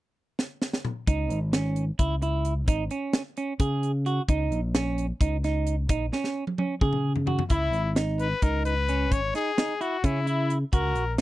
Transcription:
0.39 snare
0.62 snare
0.73 snare
0.85 mid tom
1.07 C#2 D#4, kick, closed hi-hat
1.30 G#1, closed hi-hat
1.53 C#4, snare, closed hi-hat
1.76 closed hi-hat
1.99 C#2 E4, kick, closed hi-hat
2.22 E4, closed hi-hat
2.45 closed hi-hat
2.68 G#1 D#4, kick, closed hi-hat
2.91 C#4, closed hi-hat
3.13 snare, closed hi-hat
3.37 C#4, closed hi-hat
3.60 C#3 G#4, kick, closed hi-hat
3.83 closed hi-hat
4.06 F#4, closed hi-hat
4.28 C#2 D#4, kick, closed hi-hat
4.52 A#1, closed hi-hat
4.75 C#4, snare, closed hi-hat
4.98 closed hi-hat
5.21 C#2 D#4, kick, closed hi-hat
5.44 D#4, snare, closed hi-hat
5.67 closed hi-hat
5.89 A#1 D#4, kick, closed hi-hat
6.13 C#4, snare
6.24 snare
6.47 high tom
6.58 C#4, high tom
6.81 C#3 G#4, kick, mid tom
6.93 mid tom
7.16 floor tom
7.27 F#4, floor tom
7.39 floor tom
7.50 C#2 E4, kick, closed hi-hat
7.73 G#1, closed hi-hat
7.96 D#4, snare, closed hi-hat
8.19 B4, closed hi-hat
8.42 C#2 D#4 A#4, kick, closed hi-hat
8.65 B4, closed hi-hat
8.89 C#4, closed hi-hat
9.12 G#1 C#5, kick, closed hi-hat
9.35 D#4 G#4, closed hi-hat
9.58 D#4, snare, closed hi-hat
9.81 E4 F#4, closed hi-hat
10.04 C#3 C#4 E4, kick, closed hi-hat
10.27 E4, closed hi-hat
10.50 closed hi-hat
10.73 C#2 F#4 A#4, kick, closed hi-hat
10.96 A#1, closed hi-hat

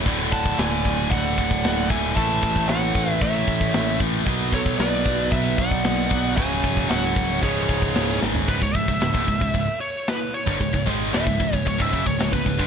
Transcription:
0.05 D1 D2 A2 D3, kick, crash
0.32 F#5 A5, kick, ride
0.46 kick
0.59 D1 D5 G#5, snare, ride
0.85 D1, kick, ride
1.11 D1 D5 F#5, kick, ride
1.38 D1, kick, ride
1.51 kick
1.64 D1, snare, ride
1.90 D1 D2 A2 D3 E5 G#5, kick, ride
2.15 A1 A2 E3 A3 E5 A5, kick, ride
2.43 A1, kick, ride
2.56 kick
2.69 A1 C#5 F#5, snare, ride
2.95 A1, kick, ride
3.12 E5
3.21 A1 C#5 E5, kick, ride
3.47 A1, kick, ride
3.61 kick
3.74 A1, snare, ride
4.00 A1 A2 E3 A3, kick, ride
4.26 B1 B2 F#3 B3, kick, ride
4.52 A4 C#5, kick, ride
4.66 kick
4.79 B1 B4 D5, snare, ride
5.06 B1, kick, ride
5.32 B1 B4 E5, kick, ride
5.58 B1 D5 F#5, kick, ride
5.71 kick
5.84 B1, snare, ride
6.09 B1 B2 F#3 B3, kick, ride
6.36 C#1 F#2 C#3 F#3 G#5, kick, ride
6.40 C#5
6.64 C#1, kick, ride
6.77 kick
6.90 C#1 C#5 F#5, snare, ride
7.16 C#1, kick, ride
7.42 C#1 C#2 G#2 C#3 G#4 C#5, kick, ride
7.69 C#1, kick, ride
7.82 kick
7.95 C#1, snare, ride
8.23 G#1, snare
8.35 floor tom
8.48 C#1 C#2 G#2 B4, kick, ride
8.62 C#1 C#2 G#2 C#5, kick
8.74 C#1 C#2 G#2 E5, kick, ride
8.88 C#1 C#2 G#2, kick
9.00 C#1 C#2 G#2, snare, ride
9.13 D1 D2 A2, kick
9.27 C#1 C#2 G#2, kick, ride
9.40 C#1 C#2 G#2, kick
9.54 C#1 C#2 G#2, kick, ride
9.81 C#5, ride
10.08 B4, snare, ride
10.34 C#5, ride
10.47 G1 G2 D3, kick
10.60 C#1 C#2 G#2, kick, ride
10.73 C#1 C#2 G#2, kick
10.86 G#1 G#2 D#3 G#3, kick, ride
11.13 D1 D2 A2 E5, snare, ride
11.27 C#1 C#2 G#2, kick
11.39 C#1 C#2 G#2, kick, ride
11.53 C#1 C#2 G#2, kick
11.65 C#1 C#2 G#2 C#5, kick, ride
11.78 C#1 C#2 G#2 E5, kick
11.92 F#1 F#2 C#3, kick, ride
12.06 C#1 C#2 G#2 C#5, kick
12.20 C#1 C#2 G#2, snare, ride
12.33 C#1 C#2 G#2 B4, kick
12.46 C#1 C#2 G#2, kick, ride
12.59 G1 G2 D3, kick

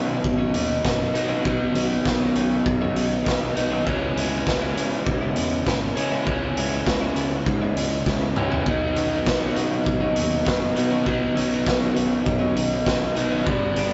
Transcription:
Already playing: B2 D#3 F#3 B3 C#4 D#4
0.24 G#1, kick
0.38 D#3 F#3 C#4 D#4
0.53 D#2 D#3 F#3 C#4 D#4, closed hi-hat
0.85 F#1 D#3 F#3 C#4 D#4, kick, snare
1.14 B2 F#3 B3 D#4, muted clean electric guitar stroke, closed hi-hat
1.18 B2
1.29 D#3 F#3 C#4 D#4
1.45 B1 B2 F#3 B3 D#4, kick
1.60 muted clean electric guitar stroke
1.74 B1 D#3 F#3 C#4 D#4, closed hi-hat
2.05 B1, kick, snare
2.20 D#3 F#3 C#4 D#4
2.35 B1 D#3 F#3 C#4 D#4, closed hi-hat
2.66 F#2, kick
2.81 D#3 F#3 C#4 D#4
2.95 B1 D#3 F#3 C#4 D#4, closed hi-hat
3.24 B1 D#3 F#3 C#4 D#4, kick, snare
3.56 B1 B2 F#3 B3 D#4, muted clean electric guitar stroke, closed hi-hat
3.71 D#3 F#3 C#4 D#4
3.85 C#2 C#3 E3 G#3 C#4, kick
4.02 muted clean electric guitar stroke
4.16 C#2 C#3 G#3 B3 E4, closed hi-hat
4.47 C#2, kick, snare
4.61 C#3 G#3 B3 E4
4.76 C#3 G#3 B3 E4, closed hi-hat
5.07 B1, kick
5.21 C#3 G#3 B3 E4
5.36 E2 C#3 G#3 B3 E4, closed hi-hat
5.66 G#1 C#3 G#3 B3 E4, kick, snare
5.95 C#3 E3 G#3 C#4, muted clean electric guitar stroke, closed hi-hat
6.11 C#3 G#3 B3 E4
6.25 C#2 C#3 E3 G#3 C#4, kick
6.43 muted clean electric guitar stroke
6.57 C#2 C#3 G#3 B3 E4, closed hi-hat
6.86 C#2, kick, snare
7.01 C#3 G#3 B3 E4
7.16 C#2 C#3 G#3 B3 E4, closed hi-hat
7.46 G#2, kick
7.61 C#3 G#3 B3 E4
7.76 C#2 C#3 G#3 B3 E4, closed hi-hat
8.06 C#2 C#3 G#3 B3 E4, kick, snare
8.36 C#2 C#3 E3 G#3 C#4, muted clean electric guitar stroke, mid tom
8.51 C#3 G#3 B3 E4, floor tom
8.66 B1 B2 F#3 B3 D#4, kick
8.82 muted clean electric guitar stroke
8.96 B1 D#3 F#3 C#4 D#4, closed hi-hat
9.26 B1, kick, snare
9.41 D#3 F#3 C#4 D#4
9.55 B2 D#3 F#3 C#4 D#4, closed hi-hat
9.86 G#1, kick
10.00 D#3 F#3 C#4 D#4
10.15 D#2 D#3 F#3 C#4 D#4, closed hi-hat
10.44 F#1 D#3 F#3 C#4 D#4, kick, snare
10.75 B2 F#3 B3 D#4, muted clean electric guitar stroke, closed hi-hat
10.80 B2
10.91 D#3 F#3 C#4 D#4
11.06 B1 B2 F#3 B3 D#4, kick
11.20 muted clean electric guitar stroke
11.35 B1 D#3 F#3 C#4 D#4, closed hi-hat
11.66 B1, kick, snare
11.80 D#3 F#3 C#4 D#4
11.95 B1 D#3 F#3 C#4 D#4, closed hi-hat
12.26 F#2, kick
12.39 D#3 F#3 C#4 D#4
12.54 B1 D#3 F#3 C#4 D#4, closed hi-hat
12.84 B1 D#3 F#3 C#4 D#4, kick, snare
13.15 B1 B2 F#3 B3 D#4, muted clean electric guitar stroke, closed hi-hat
13.31 D#3 F#3 C#4 D#4
13.45 G1 G2 D3 G3 B3 D4, kick
13.62 muted clean electric guitar stroke
13.76 G1 D3 G3 B3 D4, closed hi-hat

